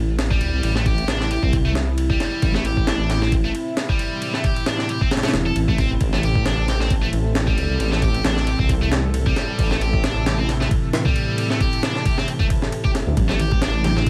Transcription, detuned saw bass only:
Already playing: A1
0.41 D2
0.53 C2
0.63 A1
1.08 A1
1.43 C2
2.42 A1
5.34 E1
5.56 A1
6.01 A1
7.13 A1
7.58 D2
7.70 C2
7.80 A1
8.25 A1
8.59 C2
9.59 A1
13.07 D2
13.17 A1

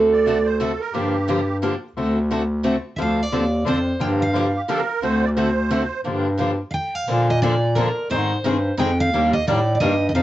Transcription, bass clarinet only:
Already playing: D2
0.93 G2
1.95 D2
2.97 D2
3.32 D#2
3.66 F2
4.00 G2
5.02 D2
6.05 G2
7.07 A#2
8.10 G#2
8.43 G2
8.77 F2
9.12 D#2
9.46 A2
9.80 G2
10.13 F2

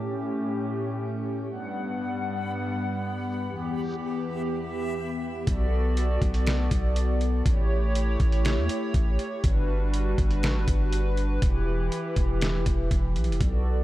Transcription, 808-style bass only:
5.47 B1
6.22 B1
6.71 B1
7.46 A1
8.20 A1
8.57 E2
8.94 A1
9.44 G1
10.18 G1
10.43 A1
10.55 G1
10.68 G1
11.42 E1
12.17 E1
12.66 E1
12.91 E1
13.16 B1
13.28 E1
13.41 B1

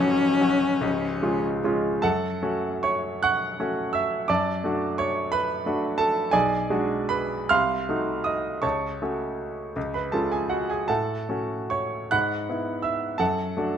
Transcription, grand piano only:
Already playing: C#1 C#2 A4 A5
0.00 F#3 C#4 F#4
0.41 F#3 C#4 F#4
0.81 C#1 C#2
1.22 G#3 C#4 F4
1.64 G#3 C#4 F4
2.02 F#2 A4 F#5 A5
2.43 A3 C#4 F#4
2.83 C#5 C#6
3.23 F#5 C#6 F#6
3.60 A3 C#4 F#4
3.93 E5 E6
4.28 F#2 D5 A5 D6
4.64 A3 D4 F#4
4.98 C#5 C#6
5.32 B4 B5
5.66 A3 D4 F#4
5.98 A4 A5
6.31 B1 G#4 D5 G#5
6.70 G#3 D4 F#4
7.09 B4 B5
7.49 C2 F5 C6 F6
7.89 A3 D#4 F#4
8.24 D#5 D#6
8.62 C#2 C#5 A5 C#6
9.02 A3 C#4 F#4
9.76 C#2
9.94 B4 B5
10.12 G#3 C#4 F4 A4 A5
10.32 G#4 G#5
10.50 F#4 F#5
10.70 G#4 G#5
10.88 A2 A4 F#5 A5
11.29 A3 C#4 F#4
11.70 C#5 C#6
12.11 G#2 F#5 B5 F#6
12.49 B3 E4
12.82 E5 E6
13.18 F#2 A4 F#5 A5
13.57 A3 D4 F#4

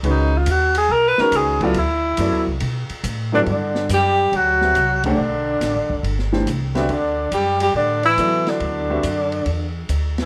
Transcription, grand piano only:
0.04 D#3 G#3 C#4 F#4 B4
1.18 D#3 G#3 C#4 F#4 B4
1.62 F#3 B3 E4 A4 D5
2.19 F#3 B3 E4 A4 D5
3.32 G2 F#3 B3 E4 A4 B4
4.61 G3 C4 F#4 B4 E5
5.05 A3 D4 G4 C5 F#5
6.32 E3 A3 D4 G4 C5
6.75 G3 C4 F#4 B4 E5
8.18 F#3 B3 E4 A4 D5
8.89 G3 C4 F#4 B4 E5

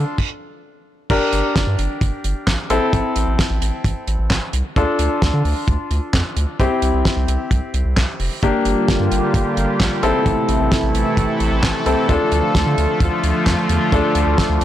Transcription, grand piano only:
Already playing: D4 F4 A4
1.10 D4 G4 A#4
2.70 C4 E4 A4
4.76 D4 F4 A4
6.60 C4 E4 G4
8.43 A#3 D4 G4
10.03 C4 E4 A4
11.86 C4 E4 A4
12.09 D4 F4 A4
13.92 D4 F4 A4

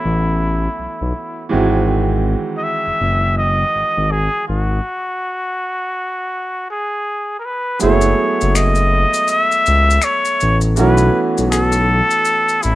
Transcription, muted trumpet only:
Already playing: E4
2.57 D#5
2.63 E5
3.37 D#5
4.11 G#4
4.48 F#4
6.70 G#4
7.39 A#4
7.45 B4
7.82 C#5
8.56 D#5
9.30 E5
10.04 C#5
10.78 B4
11.52 A4
12.63 E4

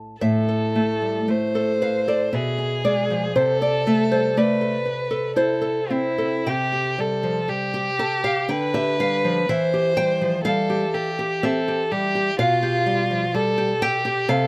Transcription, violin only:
0.23 A4
1.30 C5
2.34 G#4
3.38 A4
4.38 B4
5.37 A4
5.91 E4
6.48 G4
7.00 A4
7.49 G4
8.49 B4
9.49 C5
10.44 A4
10.95 G4
11.45 A4
11.92 G4
12.40 F4
13.34 A4
13.83 G4
14.29 A4

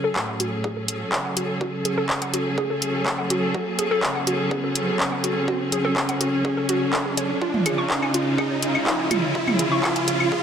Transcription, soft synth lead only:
Already playing: C#4
0.16 A3
1.12 C#4
3.54 F#4
4.03 C#4
5.00 C#4
7.42 F4
7.90 C#4
8.87 F4

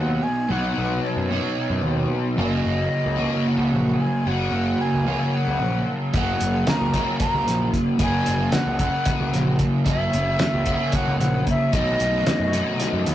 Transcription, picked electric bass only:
Already playing: D#2
0.50 B1
0.78 B1
1.17 F#2
1.70 F#2
1.83 D#2
2.38 F#1
2.65 F#1
3.06 C#2
3.58 C#2
3.73 A#1
4.26 F#1
4.52 F#1
4.94 C#2
5.48 C#2
5.61 A#1
6.14 F#1
6.42 F#1
6.81 C#2
7.34 C#2
7.47 A#1
8.00 F#1
8.28 F#1
8.66 C#2
9.21 C#2
9.34 A#1
9.86 F#1
10.14 F#1
10.54 C#2
11.08 C#2
11.20 A#1
11.73 B1
12.00 B1
12.40 F#2
12.93 F#2
13.07 D#2

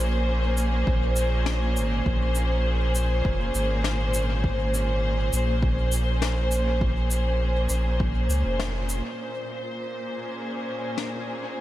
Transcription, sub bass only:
Already playing: A#1
0.87 A#1
1.76 G#1
2.06 A#1
3.25 F1
3.55 G#1
5.33 A#1
7.70 A#1
8.30 C#2
8.46 F1

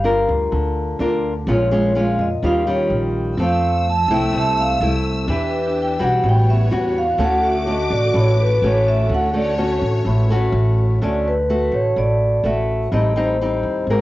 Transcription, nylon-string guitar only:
Already playing: G3
0.04 D4 F4 A#4
0.52 D3
1.00 D4 F4 A#4
1.48 A#2 G#3 C#4 F4
1.71 G#3 C#4 F4
1.95 G#3 C#4 F4
2.43 D#3 G3 C#4 F4
2.67 G3 C#4 F4
3.39 F3 A3 C4
4.10 A3 C4 E4
4.34 C3
4.82 A3 C4 E4
5.28 E3 D4 G4 B4
5.99 G3 C#4 F#4
6.25 A2
6.71 G3 C#4 F#4
7.19 D3 A3 C#4 F#4
7.67 A3 C#4 F#4
8.15 A2
8.64 A3 C#4 F#4
9.11 D3
9.34 A3 C#4 F#4
9.58 A3 C#4 F#4
10.06 A2
10.30 A3 C#4 F#4
11.02 D3 A3 C#4 F#4
11.50 A3 F#4
11.97 A2
12.44 A3 C#4 F#4
12.92 A2 G3 C4 D#4
13.16 G3 C4 D#4
13.41 G3 C4 D#4
13.89 G#3 C4 F#4 A#4

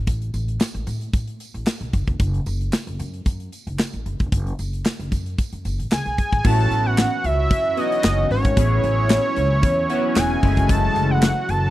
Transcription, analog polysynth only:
6.44 B3 C#4 E4 F#4
7.77 B3 C#4 E4 F#4
8.56 B3 C#4 E4 G#4
9.89 B3 C#4 E4 F#4
10.42 G#3 A3 C#4 E4

